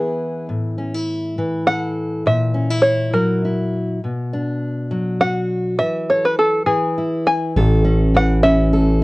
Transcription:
0.00 1.38 E3 medium
0.00 0.46 B3 soft
0.00 0.78 E4 soft
0.00 0.46 G#4 soft
0.49 2.22 A2 medium
0.78 0.94 C#4 soft
0.94 2.26 E4 soft
1.38 3.13 E3 medium
1.67 2.23 A4 soft
1.67 2.26 F#5 medium
2.26 3.99 A#2 medium
2.26 2.87 E5 medium
2.54 2.70 C#4 soft
2.70 3.43 E4 soft
2.82 3.14 C#5 medium
3.13 3.98 F#3 medium
3.13 3.76 A#4 medium
3.44 3.99 E4 soft
4.04 5.80 B2 soft
4.33 5.76 D4 soft
4.91 5.76 F#3 medium
5.21 5.80 F#4 soft
5.21 5.78 F#5 medium
5.79 6.65 E3 medium
5.79 6.09 E5 medium
6.10 6.64 A4 soft
6.10 6.24 C#5 medium
6.25 6.38 B4 medium
6.39 6.66 A4 medium
6.66 8.13 E3 medium
6.66 7.29 G#4 medium
6.98 7.52 E4 soft
7.27 8.16 G#5 medium
7.56 9.04 A1 medium
7.56 9.04 A2 medium
7.56 8.73 A4 medium
7.85 8.42 C#4 medium
8.14 9.04 E3 medium
8.14 8.43 F#5 medium
8.43 9.04 C#4 medium
8.43 9.04 E5 medium
8.73 9.04 A4 medium

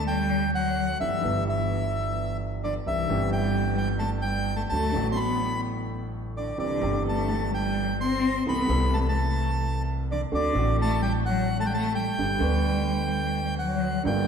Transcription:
0.00 0.92 D2 medium
0.00 0.92 D3 medium
0.00 0.93 B3 medium
0.00 0.93 B4 medium
0.07 0.51 G3 medium
0.07 0.51 G5 medium
0.55 0.98 F#3 medium
0.55 0.98 F#5 medium
1.00 1.20 G1 medium
1.00 1.20 G2 medium
1.00 1.20 E3 soft
1.00 1.44 E3 medium
1.00 1.20 G3 soft
1.00 1.20 B3 soft
1.00 1.20 G4 medium
1.00 1.44 E5 medium
1.22 2.78 G1 medium
1.22 2.79 G1 medium
1.22 2.78 G2 medium
1.22 2.77 E3 medium
1.22 2.78 G3 medium
1.22 2.79 B3 medium
1.22 2.79 G4 medium
1.49 2.37 E3 medium
1.49 2.37 E5 medium
2.64 2.74 D3 medium
2.64 2.74 D5 medium
2.86 3.06 C2 medium
2.86 3.06 C3 medium
2.86 3.06 E3 medium
2.86 3.30 E3 medium
2.86 3.06 G3 soft
2.86 3.06 C4 soft
2.86 3.06 G4 medium
2.86 3.30 E5 medium
3.08 4.63 G1 medium
3.08 4.64 G1 medium
3.08 4.64 G2 medium
3.08 4.63 E3 medium
3.08 4.63 G3 medium
3.08 4.64 C4 medium
3.08 4.65 G4 medium
3.31 3.74 G3 medium
3.31 3.76 G5 medium
3.75 3.86 G3 medium
3.75 3.89 G5 medium
3.99 4.10 A3 medium
3.99 4.10 A5 medium
4.21 4.56 G3 medium
4.21 4.56 G5 medium
4.56 4.63 A3 medium
4.56 4.62 A5 medium
4.70 4.91 D2 medium
4.70 4.92 D2 medium
4.70 4.90 D3 medium
4.70 4.92 F#3 soft
4.70 5.08 A3 medium
4.70 4.92 A3 soft
4.70 4.92 F#4 medium
4.70 5.07 A5 loud
4.92 6.50 A1 medium
4.92 6.50 A2 medium
4.92 6.49 D3 medium
4.92 6.50 F#3 medium
4.92 6.50 A3 medium
4.96 6.51 F#4 medium
5.11 5.16 C4 medium
5.11 5.19 C6 medium
5.16 5.61 B3 medium
5.16 5.61 B5 loud
6.36 6.58 D3 medium
6.36 6.58 D5 medium
6.58 6.78 C2 medium
6.58 6.79 C2 medium
6.58 6.78 C3 medium
6.58 7.03 D3 medium
6.58 6.78 E3 medium
6.58 6.78 G3 soft
6.58 6.78 C4 soft
6.58 6.78 G4 medium
6.58 7.03 D5 medium
6.80 8.37 G1 medium
6.80 8.37 G2 medium
6.80 8.36 E3 medium
6.80 8.37 G3 medium
6.80 8.38 C4 medium
6.80 8.38 G4 medium
7.06 7.49 A3 medium
7.06 7.51 A5 medium
7.54 7.97 G3 medium
7.54 7.97 G5 medium
8.01 8.44 C4 medium
8.01 8.43 C6 medium
8.46 8.65 C2 medium
8.46 8.66 C2 medium
8.46 8.66 C3 medium
8.46 8.66 E3 medium
8.46 8.66 A3 soft
8.46 8.90 B3 medium
8.46 8.66 C4 soft
8.46 8.66 A4 medium
8.46 8.95 B5 loud
8.67 10.23 C2 medium
8.67 10.23 C2 loud
8.67 10.23 C3 medium
8.67 10.22 E3 medium
8.67 10.23 A3 medium
8.67 10.24 C4 medium
8.71 10.24 A4 medium
8.93 8.99 A3 medium
8.93 9.00 A5 medium
9.00 9.06 B3 medium
9.00 9.07 B5 medium
9.07 9.81 A3 medium
9.07 9.82 A5 medium
10.11 10.21 D3 medium
10.11 10.21 D5 medium
10.32 10.51 D2 medium
10.32 10.51 D3 medium
10.32 10.75 D3 medium
10.32 10.51 A3 soft
10.32 10.51 C4 soft
10.32 10.51 F#4 medium
10.32 10.76 D5 medium
10.53 12.09 A1 medium
10.53 12.09 A2 medium
10.53 12.08 D3 medium
10.53 12.09 A3 medium
10.53 12.09 C4 medium
10.53 12.10 F#4 medium
10.79 11.00 A3 medium
10.79 11.02 A5 loud
11.02 11.13 G3 medium
11.02 11.13 G5 loud
11.26 11.57 F#3 medium
11.26 11.57 F#5 medium
11.59 11.66 A3 medium
11.59 11.66 A5 loud
11.66 11.73 G3 medium
11.66 11.73 G5 medium
11.74 11.94 A3 loud
11.74 11.93 A5 loud
11.95 13.55 G3 medium
11.95 13.54 G5 loud
12.18 12.37 G1 medium
12.18 12.38 G1 medium
12.18 12.38 G2 medium
12.18 12.37 D3 medium
12.18 12.38 G3 soft
12.18 12.37 B3 soft
12.18 12.38 G4 medium
12.39 13.97 D2 medium
12.39 13.97 D3 medium
12.39 13.98 B3 medium
12.43 13.98 B4 medium
13.59 14.03 F#3 medium
13.59 14.02 F#5 medium
14.03 14.28 G1 medium
14.03 14.28 G2 medium
14.03 14.28 D3 medium
14.03 14.28 G3 medium
14.03 14.28 A#3 medium
14.03 14.28 G5 medium
14.08 14.28 F4 medium

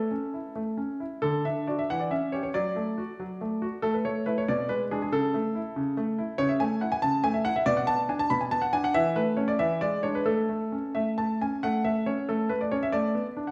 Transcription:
0.00 0.52 A4 medium
0.11 0.34 C#4 soft
0.34 0.57 E4 soft
0.56 0.77 A3 soft
0.77 1.02 C#4 soft
1.00 1.23 E4 soft
1.22 1.44 D3 medium
1.22 1.45 A4 medium
1.45 1.66 D4 soft
1.45 1.65 E5 medium
1.67 1.83 D4 soft
1.67 1.84 F#4 soft
1.67 1.78 D5 medium
1.79 1.89 E5 medium
1.90 2.11 E3 medium
1.90 2.00 F#5 medium
2.00 2.11 D5 medium
2.11 2.31 C#4 soft
2.11 2.32 E5 medium
2.32 2.48 C#4 soft
2.32 2.48 G4 soft
2.32 2.42 C#5 medium
2.43 2.54 C#5 medium
2.54 2.75 F#3 medium
2.54 3.80 D5 medium
2.76 2.99 A3 soft
2.98 3.20 F#4 soft
3.20 3.40 F#3 medium
3.41 3.63 A3 soft
3.62 3.83 F#4 medium
3.82 4.04 A3 medium
3.82 3.94 A4 medium
3.94 4.05 B4 medium
4.05 4.25 A3 soft
4.05 4.24 C#5 medium
4.26 4.42 A3 soft
4.26 4.42 E4 medium
4.26 4.37 B4 medium
4.38 4.48 C#5 medium
4.48 4.69 B2 medium
4.48 4.68 D5 medium
4.69 4.90 G#3 medium
4.69 4.82 B4 medium
4.91 5.07 G#3 soft
4.91 5.07 D4 medium
4.91 5.01 G#4 medium
5.02 5.13 G#4 medium
5.12 5.33 C#3 medium
5.12 6.39 A4 medium
5.34 5.56 A3 medium
5.55 5.77 E4 soft
5.76 5.96 C#3 medium
5.97 6.19 A3 medium
6.18 6.39 E4 medium
6.38 6.59 C#3 medium
6.38 6.49 C#5 loud
6.49 6.60 E5 medium
6.60 6.83 A3 medium
6.60 6.79 G#5 loud
6.81 7.04 E4 soft
6.81 6.92 F#5 medium
6.92 7.03 G#5 medium
7.02 7.23 C#3 medium
7.02 7.21 A5 loud
7.24 7.46 A3 medium
7.24 7.34 G#5 loud
7.34 7.45 E5 medium
7.45 7.66 E4 medium
7.45 7.55 F#5 loud
7.56 7.66 E5 medium
7.66 7.87 B2 medium
7.66 7.77 D5 loud
7.77 7.87 F#5 medium
7.87 8.10 B3 medium
7.87 8.00 A5 loud
8.09 8.31 D4 medium
8.09 8.19 G#5 medium
8.19 8.30 A5 medium
8.30 8.51 B2 medium
8.30 8.41 B5 loud
8.41 8.51 G#5 medium
8.51 8.74 B3 medium
8.51 8.62 A5 loud
8.62 8.73 F#5 medium
8.73 8.94 D4 medium
8.73 8.84 G#5 loud
8.84 8.94 F#5 medium
8.94 9.15 E3 medium
8.94 9.14 E5 loud
9.16 9.36 A3 medium
9.16 9.37 B4 medium
9.37 9.53 A3 soft
9.37 9.53 C#4 soft
9.37 9.48 C#5 medium
9.48 9.59 D5 medium
9.59 9.81 E3 medium
9.59 9.81 E5 loud
9.81 10.02 G#3 medium
9.81 10.03 D5 medium
10.03 10.20 G#3 medium
10.03 10.20 D4 medium
10.03 10.15 C#5 medium
10.15 10.26 B4 medium
10.26 10.48 A3 medium
10.26 11.36 A4 medium
10.49 10.73 A3 soft
10.72 10.96 C#4 soft
10.95 11.16 A3 medium
10.95 11.08 E5 medium
11.18 11.42 A3 medium
11.18 11.38 A5 medium
11.41 11.63 C#4 medium
11.41 11.63 G#5 medium
11.63 11.83 A3 medium
11.63 11.83 F#5 medium
11.84 12.08 A3 medium
11.84 12.06 E5 medium
12.06 12.29 C#4 soft
12.06 12.26 C#5 medium
12.29 12.49 A3 medium
12.29 12.50 A4 medium
12.49 12.72 A3 medium
12.49 12.60 B4 medium
12.61 12.71 D5 medium
12.71 12.93 C#4 medium
12.71 12.82 C#5 medium
12.83 12.93 E5 medium
12.92 13.14 A3 medium
12.92 13.25 D5 medium
13.15 13.38 B3 soft
13.37 13.51 D4 medium
13.47 13.51 F#5 medium

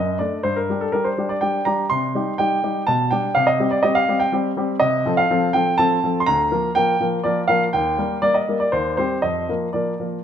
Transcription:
0.00 0.20 F#2 soft
0.00 0.18 D#5 medium
0.19 0.38 A3 soft
0.19 0.38 D4 soft
0.19 0.42 D5 medium
0.43 0.69 G2 soft
0.43 0.57 C5 medium
0.56 0.81 A#4 medium
0.69 0.87 G3 soft
0.69 0.87 D4 soft
0.69 0.88 G4 soft
0.81 0.94 A4 medium
0.92 1.11 G3 soft
0.92 1.11 D4 soft
0.92 1.11 G4 soft
0.92 1.05 A#4 medium
1.04 1.30 C5 medium
1.18 1.35 G3 soft
1.18 1.36 D4 soft
1.18 1.36 G4 soft
1.29 1.42 D5 medium
1.41 1.60 G3 soft
1.41 1.60 D4 soft
1.41 1.60 G4 soft
1.41 1.64 G5 medium
1.65 1.84 G3 soft
1.65 1.84 D4 soft
1.65 1.84 G4 soft
1.65 1.90 A#5 medium
1.90 2.15 C3 soft
1.90 2.35 C6 medium
2.15 2.32 G3 soft
2.15 2.33 D#4 soft
2.15 2.33 G4 soft
2.38 2.57 G3 soft
2.38 2.57 D#4 soft
2.38 2.57 G4 soft
2.38 2.87 G5 medium
2.63 2.81 G3 soft
2.63 2.81 D#4 soft
2.63 2.81 G4 soft
2.87 3.11 B2 medium
2.87 3.11 A5 medium
3.11 3.29 G3 soft
3.11 3.29 D4 soft
3.11 3.30 G4 soft
3.11 3.35 G5 medium
3.35 3.59 C3 soft
3.35 3.47 F5 medium
3.47 3.69 D#5 medium
3.60 3.77 G3 soft
3.60 3.77 C4 soft
3.60 3.77 G4 soft
3.71 3.83 D5 medium
3.83 4.01 G3 soft
3.83 4.02 C4 soft
3.83 4.02 G4 soft
3.83 3.95 D#5 medium
3.95 4.20 F5 medium
4.08 4.26 G3 soft
4.08 4.26 C4 soft
4.08 4.26 G4 soft
4.20 4.32 G5 medium
4.32 4.50 G3 soft
4.32 4.50 C4 soft
4.32 4.50 G4 soft
4.57 4.74 G3 soft
4.57 4.74 C4 soft
4.57 4.75 G4 soft
4.80 5.05 C3 medium
4.80 5.13 D#5 medium
5.06 5.23 F3 soft
5.06 5.23 C4 soft
5.06 5.24 A4 soft
5.17 5.54 F5 medium
5.30 5.48 F3 soft
5.30 5.48 C4 soft
5.30 5.48 A4 soft
5.53 5.72 F3 soft
5.53 5.72 C4 soft
5.53 5.72 A4 soft
5.53 5.76 G5 medium
5.78 5.96 F3 soft
5.78 5.96 C4 soft
5.78 5.96 A4 soft
5.78 6.20 A5 medium
6.04 6.21 F3 soft
6.04 6.21 C4 soft
6.04 6.21 A4 soft
6.20 6.27 C6 medium
6.26 6.51 D2 medium
6.26 6.76 A#5 medium
6.51 6.69 F3 soft
6.51 6.69 A#3 soft
6.51 6.69 A#4 soft
6.75 6.94 F3 soft
6.75 6.94 A#3 soft
6.75 6.94 A#4 soft
6.75 7.05 G5 medium
7.00 7.18 F3 soft
7.00 7.18 A#3 soft
7.00 7.19 A#4 soft
7.24 7.42 F3 soft
7.24 7.43 A#3 soft
7.24 7.43 A#4 soft
7.24 7.39 D5 medium
7.48 7.67 F3 soft
7.48 7.67 A#3 soft
7.48 7.67 A#4 soft
7.48 7.63 F5 medium
7.73 7.98 D#2 soft
7.73 8.19 G5 medium
7.98 8.16 G3 soft
7.98 8.16 A#3 soft
7.98 8.16 A#4 soft
8.22 8.41 G3 soft
8.22 8.41 A#3 soft
8.22 8.41 A#4 soft
8.22 8.35 D5 medium
8.34 8.57 D#5 medium
8.48 8.66 G3 soft
8.48 8.66 A#3 soft
8.48 8.67 A#4 soft
8.60 8.73 D5 medium
8.72 8.97 D#2 soft
8.72 8.96 C5 medium
8.97 9.16 G3 soft
8.97 9.16 C4 soft
8.97 9.17 G4 soft
8.97 9.23 C5 medium
9.22 9.48 F2 soft
9.22 9.53 D#5 medium
9.49 9.67 F3 soft
9.49 9.67 A#3 soft
9.49 9.68 A#4 soft
9.73 9.92 F3 soft
9.73 9.93 A#3 soft
9.73 9.93 A#4 soft
9.73 10.04 D5 soft
10.00 10.18 F3 soft
10.00 10.18 A#3 soft
10.00 10.19 A#4 soft

